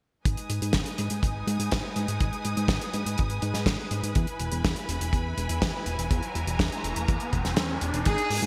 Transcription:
0.25 0.36 G#1 medium
0.25 4.12 G#3 medium
0.25 4.12 D#4 medium
0.25 8.02 B4 medium
0.25 4.12 G#5 medium
0.25 4.12 D#6 medium
0.25 kick loud
0.25 closed hi-hat medium
0.37 closed hi-hat medium
0.50 0.60 G#2 medium
0.50 closed hi-hat medium
0.62 0.73 G#2 loud
0.62 closed hi-hat medium
0.73 0.85 G#1 loud
0.73 kick loud
0.73 snare loud
0.73 closed hi-hat medium
0.86 closed hi-hat medium
0.98 1.09 G#2 loud
0.98 closed hi-hat medium
1.10 1.21 G#2 medium
1.10 closed hi-hat medium
1.23 1.44 G#1 medium
1.23 kick loud
1.23 closed hi-hat medium
1.47 1.58 G#2 loud
1.47 closed hi-hat medium
1.59 1.70 G#2 loud
1.59 closed hi-hat medium
1.72 1.83 G#1 medium
1.72 kick loud
1.72 snare loud
1.72 closed hi-hat medium
1.96 2.07 G#2 medium
1.96 closed hi-hat medium
2.08 2.19 G#2 medium
2.08 closed hi-hat medium
2.20 2.31 G#1 medium
2.20 kick loud
2.20 closed hi-hat medium
2.33 closed hi-hat soft
2.45 2.56 G#2 medium
2.45 closed hi-hat medium
2.57 2.68 G#2 loud
2.57 closed hi-hat medium
2.68 2.79 G#1 loud
2.68 kick loud
2.68 snare loud
2.68 closed hi-hat medium
2.81 closed hi-hat medium
2.93 3.04 G#2 loud
2.93 closed hi-hat medium
3.06 3.17 G#2 medium
3.06 closed hi-hat medium
3.18 3.40 G#1 medium
3.18 kick loud
3.18 closed hi-hat medium
3.30 closed hi-hat medium
3.42 3.53 G#2 loud
3.42 closed hi-hat medium
3.54 3.65 G#2 loud
3.54 snare soft
3.54 closed hi-hat medium
3.66 3.77 G#1 medium
3.66 kick loud
3.66 snare loud
3.66 closed hi-hat medium
3.91 4.02 G#2 medium
3.91 closed hi-hat medium
4.03 4.14 G#2 medium
4.03 closed hi-hat medium
4.15 4.26 E2 medium
4.15 8.02 E3 medium
4.15 8.02 E4 medium
4.15 8.02 G#5 medium
4.15 6.09 B5 medium
4.15 kick loud
4.15 closed hi-hat medium
4.15 riser medium
4.27 closed hi-hat soft
4.40 4.51 E1 medium
4.40 closed hi-hat medium
4.52 4.63 E1 loud
4.52 closed hi-hat medium
4.64 4.75 E2 loud
4.64 kick loud
4.64 snare loud
4.64 closed hi-hat medium
4.76 closed hi-hat medium
4.89 4.99 E1 loud
4.89 closed hi-hat medium
5.01 5.12 E1 medium
5.01 closed hi-hat medium
5.13 5.34 E2 medium
5.13 kick loud
5.13 closed hi-hat medium
5.37 5.48 E1 loud
5.37 closed hi-hat medium
5.49 5.60 E1 loud
5.49 closed hi-hat medium
5.62 5.73 E2 medium
5.62 kick loud
5.62 snare loud
5.62 closed hi-hat medium
5.86 5.97 E1 medium
5.86 closed hi-hat medium
5.98 6.09 E1 medium
5.98 closed hi-hat medium
6.11 6.21 E2 medium
6.11 8.04 A#5 medium
6.11 kick loud
6.11 closed hi-hat medium
6.23 closed hi-hat soft
6.35 6.46 E1 medium
6.35 closed hi-hat medium
6.47 6.58 E1 loud
6.47 closed hi-hat medium
6.59 6.70 E2 loud
6.59 kick loud
6.59 snare loud
6.59 closed hi-hat medium
6.72 closed hi-hat medium
6.84 6.95 E1 medium
6.84 closed hi-hat medium
6.96 7.07 E1 medium
6.96 closed hi-hat medium
7.08 7.19 E2 medium
7.08 kick loud
7.08 closed hi-hat medium
7.20 closed hi-hat medium
7.33 7.43 E1 loud
7.33 kick medium
7.33 closed hi-hat medium
7.45 7.56 E1 loud
7.45 snare soft
7.45 closed hi-hat medium
7.56 7.78 E2 medium
7.56 snare loud
7.56 closed hi-hat medium
7.81 7.92 E1 medium
7.81 closed hi-hat medium
7.94 8.04 E1 medium
7.94 closed hi-hat medium
8.05 8.17 G#1 loud
8.05 8.46 B3 medium
8.05 8.46 D#4 medium
8.05 8.46 G#4 medium
8.05 8.46 G#4 loud
8.05 kick loud
8.05 closed hi-hat medium
8.05 crash medium
8.18 closed hi-hat medium
8.30 8.41 G#2 medium
8.30 open hi-hat loud
8.42 8.46 G#2 loud
8.42 closed hi-hat medium

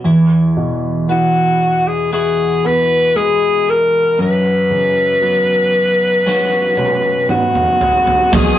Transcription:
0.00 1.09 B3 soft
0.00 0.16 C#4 soft
0.00 1.50 F#4 soft
0.04 4.15 E2 medium
0.04 4.19 E3 medium
0.57 2.60 B2 soft
1.08 3.12 E3 soft
1.08 2.12 B3 soft
1.08 1.89 F#4 medium
1.87 2.12 G#4 medium
2.13 5.22 B3 soft
2.13 4.30 E4 soft
2.13 5.64 F#4 soft
2.13 2.68 G#4 medium
2.64 4.15 B3 soft
2.64 3.18 B4 medium
3.16 4.16 G#3 soft
3.16 3.71 G#4 medium
3.70 4.20 A#4 medium
4.18 8.29 F#2 medium
4.18 8.33 F#2 medium
4.18 7.27 B4 medium
4.70 6.74 C#3 soft
5.21 7.25 F#3 soft
5.21 6.25 B3 soft
6.26 8.59 B3 soft
6.26 8.44 C#4 soft
6.26 8.34 F#4 soft
6.26 snare soft
6.77 8.29 C#4 soft
6.77 high tom medium
7.29 8.30 B3 soft
7.29 8.36 F#4 medium
7.29 mid tom medium
7.55 mid tom medium
7.81 floor tom medium
8.07 floor tom medium
8.32 8.59 B1 medium
8.32 8.59 B2 medium
8.32 8.59 B3 medium
8.32 8.59 G#4 medium
8.32 8.59 F#5 medium
8.32 8.59 G#5 medium
8.32 8.59 D#6 medium
8.32 kick loud
8.32 floor tom loud
8.32 crash medium

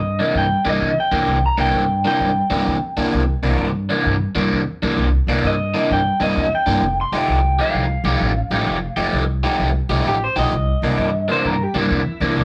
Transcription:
0.00 0.17 G2 medium
0.00 0.35 D#5 medium
0.19 0.45 C3 medium
0.19 0.45 E3 medium
0.19 0.45 A#3 medium
0.19 0.44 D4 medium
0.35 0.53 G2 medium
0.35 0.66 G5 medium
0.65 0.75 G2 medium
0.65 0.91 C3 medium
0.65 0.91 E3 medium
0.65 0.90 A#3 medium
0.65 0.90 D4 medium
0.65 0.97 D#5 medium
0.81 0.99 E2 medium
1.00 1.43 G5 medium
1.12 1.22 E2 medium
1.12 1.37 C3 medium
1.12 1.37 E3 medium
1.12 1.37 A#3 medium
1.12 1.37 D4 medium
1.27 1.46 C2 medium
1.46 1.59 A#5 medium
1.58 1.68 C2 medium
1.58 1.83 C3 medium
1.58 1.83 E3 medium
1.58 1.83 A#3 medium
1.58 1.83 D4 medium
1.58 2.04 G5 medium
1.73 2.02 G2 medium
2.05 2.30 C3 medium
2.05 2.30 E3 medium
2.05 2.30 A#3 medium
2.05 2.29 D4 medium
2.05 3.41 G5 medium
2.20 2.39 G2 medium
2.50 2.60 G2 medium
2.50 2.76 C3 medium
2.50 2.76 E3 medium
2.50 2.76 A#3 medium
2.50 2.75 D4 medium
2.67 2.85 E2 medium
2.97 3.07 E2 medium
2.97 3.23 C3 medium
2.97 3.23 E3 medium
2.97 3.22 A#3 medium
2.97 3.22 D4 medium
3.13 3.32 C2 medium
3.43 3.53 C2 medium
3.43 3.69 C3 medium
3.43 3.69 E3 medium
3.43 3.68 A#3 medium
3.43 3.68 D4 medium
3.59 3.87 G2 medium
3.89 4.15 C3 medium
3.89 4.15 E3 medium
3.89 4.15 A#3 medium
3.89 4.14 D4 medium
4.06 4.24 G2 medium
4.35 4.45 G2 medium
4.35 4.61 C3 medium
4.35 4.61 E3 medium
4.35 4.61 A#3 medium
4.35 4.60 D4 medium
4.52 4.71 E2 medium
4.82 4.92 E2 medium
4.82 5.08 C3 medium
4.82 5.08 E3 medium
4.82 5.08 A#3 medium
4.82 5.07 D4 medium
4.98 5.17 C2 medium
5.27 5.37 C2 medium
5.27 5.54 C3 medium
5.27 5.54 E3 medium
5.27 5.54 A#3 medium
5.27 5.53 D4 medium
5.43 5.72 G2 medium
5.43 5.90 D#5 medium
5.74 6.00 C3 medium
5.74 6.00 E3 medium
5.74 6.00 A#3 medium
5.74 5.99 D4 medium
5.91 6.09 G2 medium
5.91 6.21 G5 medium
6.20 6.30 G2 medium
6.20 6.46 C3 medium
6.20 6.46 E3 medium
6.20 6.46 A#3 medium
6.20 6.45 D4 medium
6.20 6.52 D#5 medium
6.36 6.55 E2 medium
6.55 6.98 G5 medium
6.66 6.77 G2 medium
6.66 6.83 C3 medium
6.66 6.83 E3 medium
6.66 6.83 A#3 medium
6.66 6.83 D4 medium
6.82 7.01 F1 medium
7.01 7.15 C6 medium
7.12 7.22 F1 medium
7.12 7.38 F3 medium
7.12 7.38 A3 medium
7.12 7.38 D#4 medium
7.12 7.38 G4 medium
7.16 7.60 G5 medium
7.28 7.57 C2 medium
7.59 7.85 F3 medium
7.59 7.84 A3 medium
7.59 7.84 D#4 medium
7.59 7.84 G4 medium
7.59 8.95 F5 medium
7.74 7.93 C2 medium
8.04 8.14 C2 medium
8.04 8.31 F3 medium
8.04 8.31 A3 medium
8.04 8.31 D#4 medium
8.04 8.30 G4 medium
8.21 8.39 A1 medium
8.50 8.61 A1 medium
8.50 8.77 F3 medium
8.50 8.77 A3 medium
8.50 8.77 D#4 medium
8.50 8.77 G4 medium
8.66 8.85 F1 medium
8.97 9.07 F1 medium
8.97 9.23 F3 medium
8.97 9.23 A3 medium
8.97 9.23 D#4 medium
8.97 9.22 G4 medium
9.13 9.42 C2 medium
9.44 9.69 F3 medium
9.44 9.69 A3 medium
9.44 9.69 D#4 medium
9.44 9.69 G4 medium
9.59 9.78 C2 medium
9.89 9.99 C2 medium
9.89 10.16 F3 medium
9.89 10.16 A3 medium
9.89 10.15 D#4 medium
9.89 10.15 G4 medium
10.06 10.24 A1 medium
10.06 10.22 G4 medium
10.24 10.38 C5 medium
10.36 10.46 B1 medium
10.36 10.53 F3 medium
10.36 10.53 A3 medium
10.36 10.53 D#4 medium
10.36 10.53 G4 medium
10.36 11.28 D#5 medium
10.52 10.71 C2 medium
10.82 10.92 C2 medium
10.82 11.09 C3 medium
10.82 11.08 E3 medium
10.82 11.08 A#3 medium
10.82 11.08 D4 medium
10.98 11.27 G2 medium
11.28 11.55 C3 medium
11.28 11.54 E3 medium
11.28 11.54 A#3 medium
11.28 11.54 D4 medium
11.28 11.46 C5 medium
11.44 11.63 G2 medium
11.44 11.63 A#4 medium
11.63 11.78 G4 medium
11.74 11.84 G2 medium
11.74 12.01 C3 medium
11.74 12.01 E3 medium
11.74 12.00 A#3 medium
11.74 12.00 D4 medium
11.74 12.44 E4 medium
11.90 12.09 E2 medium
12.20 12.31 E2 medium
12.20 12.44 C3 medium
12.20 12.44 E3 medium
12.20 12.44 A#3 medium
12.20 12.44 D4 medium
12.37 12.44 C2 medium

